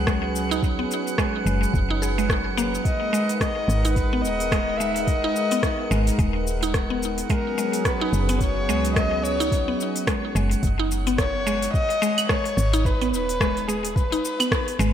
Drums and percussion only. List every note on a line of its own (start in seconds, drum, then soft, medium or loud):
0.07 kick loud
0.07 cross-stick medium
0.07 shaker soft
0.36 shaker medium
0.52 shaker soft
0.63 kick loud
0.63 shaker soft
0.91 shaker medium
1.07 shaker soft
1.18 kick loud
1.18 cross-stick medium
1.18 shaker soft
1.47 shaker medium
1.63 shaker soft
1.74 kick loud
1.74 shaker soft
2.03 shaker medium
2.19 shaker soft
2.29 kick loud
2.29 cross-stick medium
2.29 shaker soft
2.58 shaker medium
2.75 shaker soft
2.85 kick medium
2.85 open hi-hat soft
2.85 shaker soft
3.14 shaker medium
3.29 open hi-hat medium
3.29 shaker soft
3.41 kick loud
3.41 cross-stick medium
3.41 open hi-hat soft
3.41 shaker soft
3.69 cross-stick soft
3.69 shaker medium
3.85 open hi-hat medium
3.85 shaker soft
3.96 kick medium
3.96 open hi-hat soft
3.96 shaker soft
4.25 shaker medium
4.40 open hi-hat medium
4.40 shaker soft
4.52 kick loud
4.52 cross-stick medium
4.52 open hi-hat soft
4.52 shaker soft
4.81 shaker medium
4.96 open hi-hat soft
4.96 shaker soft
5.07 kick medium
5.07 open hi-hat soft
5.07 shaker soft
5.36 shaker medium
5.51 open hi-hat medium
5.51 shaker soft
5.63 kick medium
5.63 cross-stick medium
5.63 open hi-hat soft
5.63 shaker soft
5.92 shaker medium
6.07 open hi-hat medium
6.07 shaker soft
6.19 kick loud
6.19 open hi-hat soft
6.19 shaker soft
6.47 shaker medium
6.63 open hi-hat medium
6.63 shaker soft
6.74 kick loud
6.74 cross-stick medium
6.74 open hi-hat soft
6.74 shaker soft
7.03 shaker medium
7.18 open hi-hat medium
7.18 shaker soft
7.30 kick medium
7.30 open hi-hat soft
7.30 shaker soft
7.58 shaker medium
7.73 open hi-hat medium
7.73 shaker soft
7.85 kick medium
7.85 cross-stick medium
7.85 open hi-hat soft
7.85 shaker soft
8.13 shaker medium
8.29 open hi-hat medium
8.29 shaker soft
8.41 kick medium
8.41 open hi-hat soft
8.41 shaker soft
8.69 shaker medium
8.85 open hi-hat medium
8.85 shaker soft
8.96 kick loud
8.96 cross-stick medium
8.96 open hi-hat soft
8.96 shaker soft
9.25 shaker medium
9.40 open hi-hat medium
9.40 shaker soft
9.52 kick loud
9.52 open hi-hat soft
9.52 shaker soft
9.81 shaker medium
9.96 open hi-hat medium
9.96 shaker soft
10.07 kick loud
10.07 cross-stick loud
10.07 open hi-hat soft
10.07 shaker soft
10.35 cross-stick soft
10.35 shaker medium
10.51 open hi-hat medium
10.51 shaker soft
10.63 kick loud
10.63 open hi-hat soft
10.63 shaker soft
10.91 shaker medium
11.07 open hi-hat medium
11.07 shaker soft
11.18 kick loud
11.18 cross-stick medium
11.18 open hi-hat soft
11.18 shaker soft
11.47 shaker medium
11.62 open hi-hat medium
11.62 shaker soft
11.74 kick loud
11.74 shaker soft
11.90 open hi-hat soft
12.03 shaker medium
12.18 open hi-hat medium
12.18 claves medium
12.18 shaker soft
12.29 kick loud
12.29 cross-stick loud
12.29 shaker soft
12.45 open hi-hat soft
12.57 cross-stick soft
12.57 shaker medium
12.73 open hi-hat medium
12.73 shaker soft
12.85 kick loud
12.85 shaker soft
13.01 open hi-hat soft
13.14 shaker medium
13.29 open hi-hat medium
13.29 shaker soft
13.40 kick loud
13.40 cross-stick loud
13.40 shaker soft
13.57 open hi-hat soft
13.69 shaker medium
13.85 open hi-hat medium
13.85 shaker soft
13.96 kick loud
13.96 shaker soft
14.12 open hi-hat soft
14.25 shaker medium
14.40 open hi-hat medium
14.40 claves medium
14.40 shaker soft
14.52 kick loud
14.52 cross-stick loud
14.52 shaker soft
14.68 open hi-hat soft
14.80 shaker medium